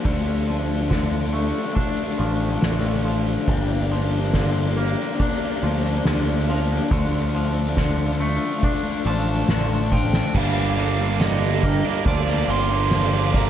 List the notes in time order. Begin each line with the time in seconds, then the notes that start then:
Already playing: F3 D4 F5
0.04 D2 D3 A3 D4 F4 A4, kick, ride
0.12 A3 D4
0.20 A3 D4
0.28 A3 D4
0.35 A3 D4
0.43 A3 D4
0.48 F3 A3 D4, ride
0.58 A3 D4
0.65 A3 D4
0.73 A3 D4
0.81 A3 D4
0.89 D3 A3 D4, kick, snare, ride
0.96 A3 D4
1.04 A3 D4
1.10 A3 D4
1.19 A3 D4
1.26 A3 D4
1.33 A3 D4, ride
1.41 A3 D4
1.49 A3 D4
1.58 A3 D4
1.66 A3 D4
1.73 A3 D4, kick, ride
1.80 A3 D4
1.88 A3 D4
1.95 A3 D4
2.03 A3 D4
2.11 A3 D4
2.17 A1 F3 A3 D4, ride
2.25 A3 D4
2.34 A3 D4
2.41 A3 D4
2.49 A3 D4
2.56 A3 D4
2.61 A1 D3, snare, ride
2.65 A3 D4
2.71 A3 D4
2.79 A3 D4
2.87 A3 D4
2.94 A3 D4
3.02 F3 A3 D4, ride
3.10 A3 D4
3.17 A3 D4
3.26 A3 D4
3.33 A3 D4
3.40 A3 D4
3.47 G1 G2 A#3 D4 G4 A#4, kick, ride
3.56 A#3 D4
3.64 A#3 D4
3.71 A#3 D4
3.80 A#3 D4
3.86 A#3 D4
3.90 F3, ride
3.95 A#3 D4
4.02 A#3 D4
4.09 A#3 D4
4.17 A#3 D4
4.25 A#3 D4
4.32 D3 A#3 D4, kick, snare, ride
4.40 A#3 D4
4.48 A#3 D4
4.56 A#3 D4
4.63 A#3 D4
4.70 A#3 D4
4.76 A#3, ride
4.81 D4
4.86 A#3 D4
4.93 A#3
4.97 D4
5.01 A#3
5.06 A#3 D4
5.14 A#3 D4
5.20 D4, kick, ride
5.25 A#3
5.29 A#3 D4
5.36 A#3 D4
5.43 D4
5.47 A#3 D4
5.55 A#3
5.59 D2 F3 A#3 D4, ride
5.67 A#3 D4
5.75 A#3 D4
5.83 A#3 D4
5.90 A#3 D4
5.98 A#3 D4
6.05 D2 D3 A#3 D4, snare, ride
6.13 A#3 D4
6.21 A#3 D4
6.28 A#3 D4
6.37 A#3 D4
6.44 A#3 D4
6.48 F3 D4, ride
6.54 A#3
6.60 A#3 D4
6.68 A#3 D4
6.75 A#3 D4
6.83 A#3 D4
6.91 D2 D3 A3 D4 F4 A4 F5, kick
6.99 A3 D4
7.06 A3 D4
7.14 A3 D4
7.21 A3 D4
7.30 A3 D4
7.35 F3 A3 D4
7.44 A3 D4
7.53 A3 D4
7.60 A3 D4
7.68 A3 D4
7.76 D3 A3 D4, kick, snare
7.82 A3 D4
7.90 A3 D4
7.97 A3 D4
8.06 A3 D4
8.13 A3 D4
8.20 A3 D4
8.28 A3 D4
8.36 A3 D4
8.45 A3 D4
8.52 A3 D4
8.59 A3 D4
8.63 A3 D4, kick
8.68 D4
8.74 A3 D4
8.83 A3 D4
8.90 A3 D4
8.98 A3 D4
9.05 A1 F3 A3 D4 A5
9.13 A3 D4
9.19 A3 D4
9.27 A3 D4
9.35 A3 D4
9.43 A3 D4
9.48 A1 D3 A3 D4, snare
9.59 A3 D4
9.66 A3 D4
9.73 A3 D4
9.81 A3 D4
9.89 F3 A3 D4, kick
9.93 G5
9.97 A3 D4
10.04 A3 D4
10.12 A3 D4, snare
10.19 A3 D4
10.27 A3 D4
10.34 G1 G2 D3 G3 A#3 D4 G4 A#4 F5, kick, crash
10.77 D3 G3 A#3 D4, ride
10.98 G3 A#3 D4
11.19 G2 D3 G3 A#3 D4 D#5, snare, ride
11.41 G3 A#3 D4
11.62 D3 G3 A#3, muted overdriven electric guitar stroke, kick, ride
11.66 D4
11.84 G3 A#3 D4, muted overdriven electric guitar stroke
12.06 D2 F3 D5, kick, ride
12.27 G3 A#3 D4
12.47 G1 D3 G3 A#3 C6, ride
12.52 D4
12.70 G3 A#3 D4, muted overdriven electric guitar stroke
12.91 G2 D3 F3 G3 A#3 D4, snare, ride
13.14 G3 A#3 D4
13.33 D3 G3 A#3 D4 A#5, kick, ride